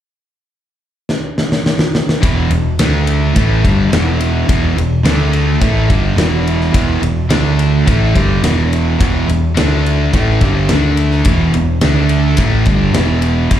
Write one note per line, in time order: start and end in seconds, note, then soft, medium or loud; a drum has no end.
1.09 snare medium
1.38 snare medium
1.52 snare medium
1.66 snare medium
1.79 snare medium
1.95 snare medium
2.09 snare medium
2.21 2.49 E1 medium
2.21 2.50 E2 medium
2.21 2.50 B2 medium
2.21 2.50 E3 loud
2.21 kick loud
2.21 ride loud
2.50 2.77 E1 medium
2.50 2.74 E2 medium
2.50 2.74 B2 medium
2.50 ride medium
2.79 3.32 D2 medium
2.79 3.36 D3 medium
2.79 3.36 A3 medium
2.79 3.36 D4 medium
2.79 snare loud
2.79 ride medium
3.07 ride medium
3.36 3.63 A1 medium
3.36 3.64 A2 medium
3.36 3.64 E3 medium
3.36 3.64 A3 loud
3.36 kick medium
3.36 ride medium
3.65 3.91 G1 medium
3.65 3.92 G2 medium
3.65 3.92 D3 loud
3.65 3.92 G3 medium
3.65 kick medium
3.65 ride medium
3.92 4.45 E1 medium
3.92 4.48 E2 medium
3.92 4.48 B2 loud
3.92 4.48 E3 medium
3.92 snare loud
3.92 ride medium
4.21 ride medium
4.48 4.75 E1 medium
4.48 4.75 E2 medium
4.48 4.75 B2 medium
4.48 4.77 E3 loud
4.48 kick loud
4.48 ride loud
4.76 5.03 E1 medium
4.76 4.99 E2 medium
4.76 5.00 B2 medium
4.76 ride medium
5.03 5.57 D2 medium
5.03 5.61 D3 medium
5.03 5.61 A3 loud
5.03 5.61 D4 loud
5.03 snare loud
5.03 ride medium
5.33 ride medium
5.61 5.88 A1 medium
5.61 5.89 A2 medium
5.61 5.89 E3 medium
5.61 5.90 A3 loud
5.61 kick loud
5.61 ride medium
5.90 6.15 G1 loud
5.90 6.17 G2 medium
5.90 6.18 D3 loud
5.90 6.18 G3 medium
5.90 kick medium
5.90 ride medium
6.16 6.70 E1 medium
6.16 6.72 E2 medium
6.16 6.72 B2 medium
6.16 6.73 E3 loud
6.16 snare loud
6.16 ride medium
6.47 ride medium
6.61 snare soft
6.73 7.01 E1 medium
6.73 7.00 E2 medium
6.73 7.00 B2 loud
6.73 7.02 E3 loud
6.73 kick loud
6.73 ride medium
7.01 7.29 E1 medium
7.01 7.25 E2 medium
7.01 7.25 B2 medium
7.01 ride medium
7.29 7.83 D2 medium
7.29 7.85 D3 loud
7.29 7.85 A3 medium
7.29 7.85 D4 medium
7.29 snare loud
7.29 ride medium
7.59 ride medium
7.85 8.14 A1 loud
7.85 8.14 A2 medium
7.85 8.14 E3 loud
7.85 8.14 A3 loud
7.85 kick loud
7.85 ride medium
8.14 8.42 G1 medium
8.14 8.42 G2 medium
8.14 8.43 D3 medium
8.14 8.43 G3 medium
8.14 kick loud
8.14 ride medium
8.43 8.96 E1 medium
8.43 8.99 E2 medium
8.43 8.98 B2 medium
8.43 8.99 E3 medium
8.43 snare loud
8.43 ride loud
8.73 ride medium
8.99 9.27 E1 medium
8.99 9.27 E2 medium
8.99 9.27 B2 medium
8.99 9.28 E3 loud
8.99 kick loud
8.99 ride loud
9.28 9.55 E1 medium
9.28 9.51 E2 medium
9.28 9.51 B2 medium
9.28 ride medium
9.54 10.09 D2 medium
9.54 10.11 D3 medium
9.54 10.11 A3 medium
9.54 10.11 D4 loud
9.54 snare loud
9.54 ride medium
9.59 10.13 D4 medium
9.86 ride medium
10.13 10.39 A1 medium
10.13 10.40 A2 medium
10.13 10.40 E3 medium
10.13 10.40 A3 medium
10.13 kick loud
10.13 ride medium
10.41 10.67 G1 medium
10.41 10.68 G2 medium
10.41 10.69 D3 medium
10.41 10.69 G3 medium
10.41 kick medium
10.41 ride medium
10.69 11.22 D2 medium
10.69 11.26 D3 medium
10.69 11.26 A3 medium
10.69 11.26 D4 medium
10.69 snare loud
10.69 ride medium
10.97 ride medium
11.11 snare soft
11.25 11.52 E1 medium
11.25 11.53 E2 medium
11.25 11.54 B2 medium
11.25 11.54 E3 loud
11.25 kick loud
11.25 ride medium
11.54 11.80 E1 medium
11.54 11.77 E2 medium
11.54 11.77 B2 medium
11.54 ride medium
11.81 12.34 D2 medium
11.81 12.37 D3 medium
11.81 12.38 A3 loud
11.81 12.38 D4 loud
11.81 snare loud
11.81 ride medium
12.09 ride medium
12.37 12.64 A1 medium
12.37 12.66 A2 medium
12.37 12.66 E3 loud
12.37 12.66 A3 loud
12.37 kick loud
12.37 ride medium
12.66 12.93 G1 medium
12.66 12.94 G2 medium
12.66 12.94 D3 medium
12.66 12.95 G3 loud
12.66 kick medium
12.66 ride medium
12.94 13.46 E1 medium
12.94 13.49 E2 medium
12.94 13.49 B2 medium
12.94 13.50 E3 loud
12.94 snare loud
12.94 ride medium
13.22 ride medium
13.50 13.60 E1 medium
13.50 13.60 E2 medium
13.50 13.60 B2 loud
13.50 13.60 E3 loud
13.50 kick loud
13.50 ride loud